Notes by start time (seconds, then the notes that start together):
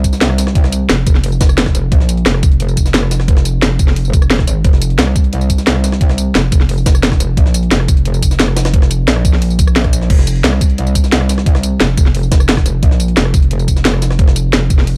Already playing: C2
0.04 kick, closed hi-hat, tambourine
0.13 snare, tambourine
0.21 snare, closed hi-hat
0.30 cross-stick
0.38 snare, closed hi-hat, tambourine
0.47 cross-stick, snare
0.55 kick, closed hi-hat
0.64 cross-stick, snare
0.72 closed hi-hat, tambourine
0.90 F1, snare, closed hi-hat
1.07 kick, closed hi-hat, tambourine
1.15 snare
1.24 closed hi-hat, open hi-hat
1.32 tambourine
1.41 kick, snare, closed hi-hat, tambourine
1.49 cross-stick, tambourine
1.58 snare, closed hi-hat
1.66 kick, cross-stick, snare
1.75 F1, closed hi-hat, tambourine
1.92 A#1, kick, closed hi-hat
2.00 snare
2.09 closed hi-hat, tambourine
2.17 closed hi-hat
2.26 F1, snare, closed hi-hat
2.34 cross-stick
2.43 kick, closed hi-hat, tambourine
2.51 closed hi-hat
2.60 closed hi-hat
2.68 closed hi-hat, tambourine
2.77 kick, closed hi-hat, tambourine
2.86 snare, tambourine
2.94 snare, closed hi-hat
3.03 cross-stick
3.11 snare, closed hi-hat, tambourine
3.20 cross-stick, snare
3.28 kick, closed hi-hat
3.37 cross-stick, snare
3.45 closed hi-hat, tambourine
3.62 F1, snare, closed hi-hat
3.79 kick, closed hi-hat, tambourine
3.88 snare
3.96 closed hi-hat, open hi-hat
4.05 tambourine
4.13 kick, closed hi-hat, tambourine
4.22 cross-stick, tambourine
4.30 snare, closed hi-hat
4.39 kick, cross-stick, snare
4.47 G#1, closed hi-hat, tambourine
4.64 F1, kick, closed hi-hat
4.73 snare
4.82 closed hi-hat, tambourine
4.90 closed hi-hat
4.99 C2, snare, closed hi-hat
5.07 cross-stick
5.16 kick, closed hi-hat, tambourine
5.24 closed hi-hat
5.33 closed hi-hat
5.41 closed hi-hat, tambourine
5.50 kick, closed hi-hat, tambourine
5.58 snare, tambourine
5.67 snare, closed hi-hat
5.75 cross-stick
5.84 snare, closed hi-hat, tambourine
5.92 cross-stick, snare
6.01 kick, closed hi-hat
6.09 cross-stick, snare
6.18 closed hi-hat, tambourine
6.35 F1, snare, closed hi-hat
6.52 kick, closed hi-hat, tambourine
6.61 snare
6.69 closed hi-hat, open hi-hat
6.78 tambourine
6.86 kick, snare, closed hi-hat, tambourine
6.95 cross-stick, tambourine
7.03 snare, closed hi-hat
7.12 kick, cross-stick, snare
7.20 F1, closed hi-hat, tambourine
7.37 A#1, kick, closed hi-hat
7.46 snare
7.54 closed hi-hat, tambourine
7.63 closed hi-hat
7.71 F1, snare, closed hi-hat
7.80 cross-stick
7.88 kick, closed hi-hat, tambourine
7.97 closed hi-hat
8.05 closed hi-hat
8.14 closed hi-hat, tambourine
8.22 kick, closed hi-hat, tambourine
8.31 snare, tambourine
8.39 snare, closed hi-hat
8.48 cross-stick
8.57 snare, closed hi-hat, tambourine
8.65 cross-stick, snare, closed hi-hat
8.74 kick, closed hi-hat
8.82 cross-stick, snare
8.91 closed hi-hat, tambourine
9.08 A#1, snare, closed hi-hat
9.16 cross-stick
9.25 kick, closed hi-hat, tambourine
9.33 snare
9.42 closed hi-hat, open hi-hat
9.50 tambourine
9.59 kick, closed hi-hat, tambourine
9.67 cross-stick, tambourine
9.76 snare, closed hi-hat
9.84 kick, cross-stick, closed hi-hat
9.93 closed hi-hat, tambourine
10.01 snare
10.10 F1, kick, closed hi-hat, crash
10.19 snare
10.27 closed hi-hat, tambourine
10.36 closed hi-hat
10.44 C2, snare, closed hi-hat
10.53 cross-stick
10.61 kick, closed hi-hat, tambourine
10.70 closed hi-hat
10.78 closed hi-hat
10.87 closed hi-hat, tambourine
10.95 kick, closed hi-hat, tambourine
11.04 snare, tambourine
11.12 snare, closed hi-hat
11.21 cross-stick
11.29 snare, closed hi-hat, tambourine
11.38 cross-stick, snare
11.46 kick, closed hi-hat
11.55 cross-stick, snare
11.63 closed hi-hat, tambourine
11.80 F1, snare, closed hi-hat
11.97 kick, closed hi-hat, tambourine
12.06 snare
12.15 closed hi-hat, open hi-hat
12.23 tambourine
12.32 kick, snare, closed hi-hat, tambourine
12.40 cross-stick, tambourine
12.49 snare, closed hi-hat
12.57 kick, cross-stick, snare
12.66 F1, closed hi-hat, tambourine
12.83 A#1, kick, closed hi-hat
12.91 snare
13.00 closed hi-hat, tambourine
13.08 closed hi-hat
13.17 F1, snare, closed hi-hat
13.25 cross-stick
13.34 kick, closed hi-hat, tambourine
13.42 closed hi-hat
13.51 closed hi-hat
13.59 closed hi-hat, tambourine
13.68 kick, closed hi-hat, tambourine
13.76 snare, tambourine
13.85 snare, closed hi-hat
13.93 cross-stick
14.02 snare, closed hi-hat, tambourine
14.11 cross-stick, snare
14.19 kick, closed hi-hat
14.28 cross-stick, snare
14.36 closed hi-hat, tambourine
14.53 F1, snare, closed hi-hat
14.70 kick, closed hi-hat, tambourine
14.79 snare
14.87 closed hi-hat, open hi-hat